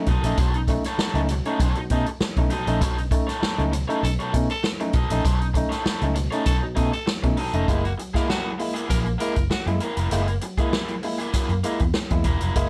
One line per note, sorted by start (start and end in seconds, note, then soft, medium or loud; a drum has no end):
0.06 0.21 B1 medium
0.06 0.23 B2 medium
0.06 0.23 F#3 medium
0.06 0.22 D#4 medium
0.06 0.23 A4 medium
0.06 0.23 D#5 medium
0.06 kick medium
0.06 closed hi-hat soft
0.23 0.35 A#1 medium
0.23 0.37 A3 medium
0.23 0.37 C#4 medium
0.23 0.37 D#4 medium
0.23 0.37 D#4 soft
0.23 0.37 A4 medium
0.23 0.37 D#5 medium
0.23 closed hi-hat medium
0.37 0.76 B1 loud
0.37 0.53 B2 medium
0.37 0.53 F#3 medium
0.37 0.59 D#4 medium
0.37 0.55 A4 loud
0.37 0.54 C#5 loud
0.37 kick loud
0.37 closed hi-hat medium
0.54 0.60 C#4 soft
0.54 0.60 D#4 soft
0.54 muted overdriven electric guitar stroke medium
0.54 closed hi-hat soft
0.67 0.83 A3 medium
0.67 0.83 C#4 medium
0.67 0.83 D#4 medium
0.67 muted overdriven electric guitar stroke soft
0.67 kick medium
0.67 closed hi-hat medium
0.84 0.98 D#4 soft
0.84 0.99 A4 medium
0.84 0.98 C#5 medium
0.84 snare soft
0.84 closed hi-hat soft
0.98 1.17 D#4 medium
0.98 1.18 A4 medium
0.98 1.18 C#5 medium
0.98 muted fingered electric bass stroke soft
0.98 snare loud
1.14 1.40 C#2 medium
1.14 1.28 A3 medium
1.14 1.28 C#4 medium
1.14 1.28 D#4 medium
1.14 closed hi-hat soft
1.28 1.44 B2 medium
1.28 1.44 F#3 medium
1.28 muted overdriven electric guitar stroke soft
1.28 closed hi-hat medium
1.45 1.59 A3 medium
1.45 1.59 C#4 medium
1.45 1.59 D#4 medium
1.45 1.59 A4 medium
1.45 1.58 C#5 medium
1.45 closed hi-hat soft
1.60 1.73 B1 loud
1.60 1.81 D#4 medium
1.60 1.77 A4 loud
1.60 1.75 C#5 loud
1.60 kick medium
1.60 closed hi-hat medium
1.75 1.89 B2 medium
1.75 1.89 F#3 medium
1.75 muted overdriven electric guitar stroke soft
1.75 closed hi-hat soft
1.90 2.03 B2 loud
1.90 2.05 A3 medium
1.90 2.05 C#4 medium
1.90 2.05 D#4 medium
1.90 2.05 A4 medium
1.90 2.06 D#5 medium
1.90 kick medium
1.90 closed hi-hat medium
2.06 muted overdriven electric guitar stroke soft
2.06 closed hi-hat soft
2.21 muted fingered electric bass stroke medium
2.21 muted overdriven electric guitar stroke soft
2.21 snare loud
2.37 2.48 B1 medium
2.37 2.50 A3 medium
2.37 2.50 C#4 medium
2.37 2.50 D#4 medium
2.37 muted overdriven electric guitar stroke soft
2.37 kick loud
2.37 closed hi-hat soft
2.50 2.66 B2 medium
2.50 2.66 F#3 medium
2.50 2.65 D#4 medium
2.50 2.65 A4 medium
2.50 2.65 D#5 medium
2.50 closed hi-hat medium
2.66 2.81 A#1 medium
2.66 2.80 A3 medium
2.66 2.80 C#4 medium
2.66 2.80 D#4 medium
2.66 2.80 A4 medium
2.66 2.79 D#5 medium
2.66 closed hi-hat medium
2.81 3.20 B1 loud
2.81 2.96 B2 medium
2.81 2.96 F#3 medium
2.81 2.99 D#4 medium
2.81 2.97 A4 medium
2.81 2.96 C#5 loud
2.81 kick loud
2.81 closed hi-hat medium
2.97 3.03 C#4 soft
2.97 3.04 D#4 medium
2.97 muted overdriven electric guitar stroke soft
2.97 closed hi-hat soft
3.11 3.26 A3 medium
3.11 3.26 C#4 medium
3.11 3.27 D#4 medium
3.11 muted overdriven electric guitar stroke soft
3.11 kick loud
3.11 closed hi-hat medium
3.27 3.40 D#4 medium
3.27 3.40 A4 medium
3.27 3.40 C#5 medium
3.27 snare soft
3.27 closed hi-hat soft
3.41 3.59 D#4 medium
3.41 3.60 A4 medium
3.41 3.60 C#5 medium
3.41 muted fingered electric bass stroke medium
3.41 snare loud
3.58 3.84 C#2 medium
3.58 3.71 A3 medium
3.58 3.71 C#4 medium
3.58 3.71 D#4 medium
3.58 closed hi-hat soft
3.72 3.87 B2 medium
3.72 3.87 F#3 medium
3.72 muted overdriven electric guitar stroke soft
3.72 closed hi-hat medium
3.88 4.01 A3 medium
3.88 4.02 C#4 medium
3.88 4.02 D#4 medium
3.88 4.02 D#4 soft
3.88 4.01 A4 medium
3.88 4.01 C#5 medium
3.88 closed hi-hat soft
4.03 4.16 B1 loud
4.03 4.09 C#4 soft
4.03 4.10 D#4 soft
4.03 4.13 A4 medium
4.03 muted overdriven electric guitar stroke soft
4.03 closed hi-hat medium
4.19 4.32 B2 medium
4.19 4.32 F#3 medium
4.19 4.33 D#4 medium
4.19 4.33 A4 medium
4.19 4.34 C#5 medium
4.19 closed hi-hat soft
4.33 4.47 B2 loud
4.33 4.48 A3 medium
4.33 4.48 C#4 medium
4.33 4.48 D#4 medium
4.33 muted overdriven electric guitar stroke soft
4.33 kick medium
4.33 closed hi-hat medium
4.50 4.69 A4 loud
4.50 muted overdriven electric guitar stroke soft
4.50 closed hi-hat soft
4.63 muted overdriven electric guitar stroke soft
4.63 snare loud
4.80 4.93 A3 medium
4.80 4.93 C#4 medium
4.80 4.93 D#4 medium
4.80 muted overdriven electric guitar stroke soft
4.80 closed hi-hat soft
4.93 5.07 B1 medium
4.93 5.09 B2 medium
4.93 5.09 F#3 medium
4.93 5.08 D#4 medium
4.93 5.09 A4 medium
4.93 5.09 D#5 medium
4.93 kick loud
4.93 closed hi-hat medium
5.10 5.22 A#1 medium
5.10 5.24 A3 medium
5.10 5.24 C#4 medium
5.10 5.23 D#4 soft
5.10 5.24 D#4 medium
5.10 5.23 A4 medium
5.10 5.23 D#5 medium
5.10 closed hi-hat medium
5.24 5.63 B1 loud
5.24 5.40 B2 medium
5.24 5.40 F#3 medium
5.24 5.45 D#4 medium
5.24 5.40 A4 loud
5.24 5.39 C#5 loud
5.24 kick medium
5.24 closed hi-hat medium
5.40 5.47 C#4 soft
5.40 5.47 D#4 soft
5.40 muted overdriven electric guitar stroke soft
5.40 closed hi-hat soft
5.54 5.70 A3 medium
5.54 5.70 C#4 medium
5.54 5.70 D#4 medium
5.54 muted overdriven electric guitar stroke soft
5.54 kick medium
5.54 closed hi-hat medium
5.69 5.82 D#4 soft
5.69 5.83 A4 medium
5.69 5.83 C#5 medium
5.69 snare soft
5.69 closed hi-hat soft
5.84 6.02 D#4 medium
5.84 6.03 A4 medium
5.84 6.03 C#5 medium
5.84 muted fingered electric bass stroke soft
5.84 snare loud
6.02 6.27 C#2 medium
6.02 6.15 A3 medium
6.02 6.15 C#4 medium
6.02 6.15 D#4 medium
6.02 closed hi-hat soft
6.14 6.31 B2 medium
6.14 6.31 F#3 medium
6.14 muted overdriven electric guitar stroke soft
6.14 closed hi-hat medium
6.31 6.45 A3 medium
6.31 6.45 C#4 medium
6.31 6.44 D#4 medium
6.31 6.45 D#4 medium
6.31 6.44 A4 medium
6.31 6.44 C#5 medium
6.31 closed hi-hat soft
6.45 6.59 B1 medium
6.45 6.53 C#4 soft
6.45 6.63 D#4 medium
6.45 6.53 D#4 soft
6.45 6.61 A4 loud
6.45 6.56 A4 loud
6.45 6.60 C#5 medium
6.45 kick medium
6.45 closed hi-hat loud
6.61 6.75 B2 medium
6.61 6.75 F#3 medium
6.61 muted overdriven electric guitar stroke medium
6.75 6.90 B2 loud
6.75 6.91 A3 medium
6.75 6.91 C#4 medium
6.75 6.90 D#4 medium
6.75 6.91 D#4 medium
6.75 6.91 A4 medium
6.75 6.91 D#5 medium
6.75 kick medium
6.75 closed hi-hat medium
6.92 7.12 A4 loud
6.92 muted overdriven electric guitar stroke medium
6.92 closed hi-hat soft
7.06 muted overdriven electric guitar stroke soft
7.06 snare loud
7.23 7.35 B2 medium
7.23 7.36 A3 medium
7.23 7.36 C#4 medium
7.23 7.36 D#4 medium
7.23 muted overdriven electric guitar stroke soft
7.23 kick medium
7.23 closed hi-hat soft
7.37 7.52 B2 medium
7.37 7.52 F#3 medium
7.37 7.52 D#4 medium
7.37 7.52 A4 medium
7.37 7.52 D#5 medium
7.37 open hi-hat medium
7.53 7.65 F1 medium
7.53 7.67 A3 medium
7.53 7.67 C#4 medium
7.53 7.67 D#4 medium
7.53 7.67 D#4 soft
7.53 7.67 A4 medium
7.53 7.66 D#5 medium
7.53 closed hi-hat medium
7.68 7.93 F#1 loud
7.68 7.83 G#3 medium
7.68 7.88 A#3 loud
7.68 7.83 A#3 medium
7.68 7.83 E4 loud
7.68 7.84 E4 loud
7.68 7.83 G#4 loud
7.68 kick loud
7.68 closed hi-hat medium
7.84 7.93 F#4 medium
7.84 muted overdriven electric guitar stroke soft
7.84 closed hi-hat soft
7.98 8.13 F#3 medium
7.98 muted overdriven electric guitar stroke soft
7.98 closed hi-hat medium
8.14 8.28 G#3 medium
8.14 8.28 A#3 medium
8.14 8.27 A#3 medium
8.14 8.27 E4 medium
8.14 8.28 E4 medium
8.14 8.27 G#4 medium
8.14 8.27 A#4 medium
8.14 muted fingered electric bass stroke soft
8.14 kick medium
8.14 snare soft
8.14 closed hi-hat soft
8.28 8.44 F#3 medium
8.28 8.49 A#3 medium
8.28 8.49 E4 medium
8.28 8.53 F#4 loud
8.28 8.50 G#4 medium
8.28 snare loud
8.59 8.74 G#3 medium
8.59 8.74 A#3 medium
8.59 8.74 E4 medium
8.59 muted overdriven electric guitar stroke soft
8.59 open hi-hat medium
8.74 8.87 A#3 medium
8.74 8.82 A#3 soft
8.74 8.88 E4 medium
8.74 8.82 E4 soft
8.74 8.87 G#4 medium
8.74 closed hi-hat soft
8.88 9.15 A#1 loud
8.88 9.05 F#3 medium
8.88 9.07 A#3 medium
8.88 9.05 E4 medium
8.88 9.04 G#4 medium
8.88 8.99 A#4 medium
8.88 kick medium
8.88 closed hi-hat medium
9.05 muted overdriven electric guitar stroke soft
9.05 closed hi-hat soft
9.18 9.35 G#3 medium
9.18 9.34 A#3 medium
9.18 9.35 A#3 medium
9.18 9.34 E4 medium
9.18 9.35 E4 medium
9.18 9.44 A#4 medium
9.18 9.34 A#4 medium
9.18 closed hi-hat medium
9.35 9.48 F#1 medium
9.35 9.42 A#3 soft
9.35 9.42 E4 soft
9.35 muted overdriven electric guitar stroke soft
9.35 kick medium
9.35 closed hi-hat soft
9.50 9.66 F#3 medium
9.50 9.75 F#4 loud
9.50 muted overdriven electric guitar stroke soft
9.50 snare loud
9.66 9.78 F#2 loud
9.66 9.80 G#3 medium
9.66 9.80 A#3 medium
9.66 9.80 E4 medium
9.66 muted overdriven electric guitar stroke soft
9.66 closed hi-hat soft
9.80 9.95 A#3 medium
9.80 9.88 A#3 soft
9.80 9.96 E4 medium
9.80 9.88 E4 soft
9.80 9.96 A#4 medium
9.80 closed hi-hat medium
9.97 10.09 F1 medium
9.97 10.10 A#3 soft
9.97 10.10 E4 medium
9.97 10.10 A#4 medium
9.97 closed hi-hat medium
10.11 10.37 F#1 loud
10.11 10.27 G#3 medium
10.11 10.32 A#3 medium
10.11 10.27 A#3 medium
10.11 10.27 E4 medium
10.11 10.26 G#4 medium
10.11 closed hi-hat medium
10.28 muted overdriven electric guitar stroke soft
10.28 closed hi-hat soft
10.41 10.57 F#3 medium
10.41 muted overdriven electric guitar stroke soft
10.41 closed hi-hat medium
10.57 10.71 G#3 medium
10.57 10.72 A#3 medium
10.57 10.71 A#3 medium
10.57 10.71 E4 medium
10.57 10.72 E4 medium
10.57 10.71 G#4 medium
10.57 muted fingered electric bass stroke soft
10.57 kick medium
10.57 closed hi-hat soft
10.72 10.88 F#3 medium
10.72 10.91 A#3 medium
10.72 10.91 E4 medium
10.72 10.91 G#4 medium
10.72 snare loud
10.88 closed hi-hat soft
11.03 11.18 G#3 medium
11.03 11.18 A#3 medium
11.03 11.19 E4 medium
11.03 muted overdriven electric guitar stroke soft
11.03 open hi-hat medium
11.19 11.33 A#3 medium
11.19 11.26 A#3 soft
11.19 11.32 E4 medium
11.19 11.26 E4 soft
11.19 11.32 G#4 medium
11.19 closed hi-hat soft
11.33 11.49 F#3 medium
11.33 11.52 A#3 medium
11.33 11.51 E4 medium
11.33 11.49 G#4 medium
11.33 muted fingered electric bass stroke soft
11.33 kick medium
11.33 closed hi-hat medium
11.49 11.61 F#2 medium
11.49 muted overdriven electric guitar stroke soft
11.49 closed hi-hat soft
11.64 11.79 G#3 medium
11.64 11.78 A#3 medium
11.64 11.79 A#3 medium
11.64 11.79 E4 medium
11.64 11.79 A#4 medium
11.64 closed hi-hat medium
11.79 11.92 E2 medium
11.79 11.86 A#3 soft
11.79 11.86 E4 soft
11.79 muted overdriven electric guitar stroke soft
11.79 kick medium
11.79 closed hi-hat soft
11.94 muted overdriven electric guitar stroke soft
11.94 snare loud
12.10 12.23 E2 medium
12.10 12.24 G#3 medium
12.10 12.24 A#3 medium
12.10 12.24 E4 medium
12.10 muted overdriven electric guitar stroke soft
12.10 kick medium
12.10 closed hi-hat soft
12.24 12.38 E1 loud
12.24 12.39 A#3 medium
12.24 12.40 E4 medium
12.24 12.40 A#4 medium
12.24 kick medium
12.24 closed hi-hat medium
12.41 12.53 F1 medium
12.41 12.54 F#3 medium
12.41 12.55 A#3 medium
12.41 12.55 E4 medium
12.41 12.54 A#4 medium
12.41 closed hi-hat medium
12.56 12.69 F#1 loud
12.56 12.69 G#3 medium
12.56 12.69 A#3 loud
12.56 12.69 A#3 medium
12.56 12.69 E4 loud
12.56 12.69 G#4 loud
12.56 kick loud
12.56 closed hi-hat medium